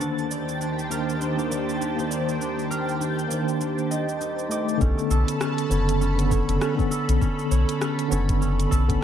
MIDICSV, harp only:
0, 0, Header, 1, 2, 480
1, 0, Start_track
1, 0, Tempo, 600000
1, 10, Time_signature, 4, 2, 24, 8
1, 7230, End_track
2, 0, Start_track
2, 0, Title_t, "Harp"
2, 0, Program_c, 0, 46
2, 0, Note_on_c, 0, 69, 86
2, 5, Note_on_c, 0, 62, 69
2, 248, Note_on_c, 0, 74, 67
2, 483, Note_off_c, 0, 62, 0
2, 486, Note_on_c, 0, 62, 67
2, 728, Note_on_c, 0, 70, 84
2, 776, Note_off_c, 0, 69, 0
2, 964, Note_off_c, 0, 62, 0
2, 967, Note_on_c, 0, 62, 71
2, 1205, Note_off_c, 0, 74, 0
2, 1209, Note_on_c, 0, 74, 64
2, 1442, Note_off_c, 0, 62, 0
2, 1445, Note_on_c, 0, 62, 67
2, 1681, Note_off_c, 0, 74, 0
2, 1684, Note_on_c, 0, 74, 65
2, 1921, Note_off_c, 0, 62, 0
2, 1925, Note_on_c, 0, 62, 71
2, 2161, Note_off_c, 0, 70, 0
2, 2165, Note_on_c, 0, 70, 95
2, 2400, Note_off_c, 0, 62, 0
2, 2403, Note_on_c, 0, 62, 70
2, 2639, Note_off_c, 0, 74, 0
2, 2642, Note_on_c, 0, 74, 65
2, 2880, Note_off_c, 0, 62, 0
2, 2884, Note_on_c, 0, 62, 69
2, 3127, Note_on_c, 0, 75, 85
2, 3175, Note_off_c, 0, 62, 0
2, 3175, Note_off_c, 0, 74, 0
2, 3368, Note_on_c, 0, 63, 71
2, 3605, Note_off_c, 0, 75, 0
2, 3608, Note_on_c, 0, 75, 65
2, 3847, Note_on_c, 0, 61, 79
2, 3862, Note_off_c, 0, 70, 0
2, 4086, Note_on_c, 0, 69, 104
2, 4325, Note_off_c, 0, 61, 0
2, 4328, Note_on_c, 0, 61, 76
2, 4563, Note_on_c, 0, 73, 73
2, 4803, Note_off_c, 0, 61, 0
2, 4806, Note_on_c, 0, 61, 81
2, 5035, Note_off_c, 0, 75, 0
2, 5042, Note_off_c, 0, 73, 0
2, 5046, Note_on_c, 0, 73, 77
2, 5284, Note_off_c, 0, 61, 0
2, 5287, Note_on_c, 0, 61, 77
2, 5524, Note_off_c, 0, 69, 0
2, 5528, Note_on_c, 0, 69, 99
2, 5531, Note_off_c, 0, 63, 0
2, 5765, Note_off_c, 0, 61, 0
2, 5768, Note_on_c, 0, 61, 81
2, 6006, Note_off_c, 0, 73, 0
2, 6009, Note_on_c, 0, 73, 75
2, 6243, Note_off_c, 0, 61, 0
2, 6246, Note_on_c, 0, 61, 78
2, 6484, Note_off_c, 0, 73, 0
2, 6487, Note_on_c, 0, 73, 75
2, 6721, Note_off_c, 0, 61, 0
2, 6724, Note_on_c, 0, 61, 84
2, 6964, Note_off_c, 0, 69, 0
2, 6968, Note_on_c, 0, 69, 104
2, 7203, Note_off_c, 0, 61, 0
2, 7230, Note_off_c, 0, 69, 0
2, 7230, Note_off_c, 0, 73, 0
2, 7230, End_track
0, 0, End_of_file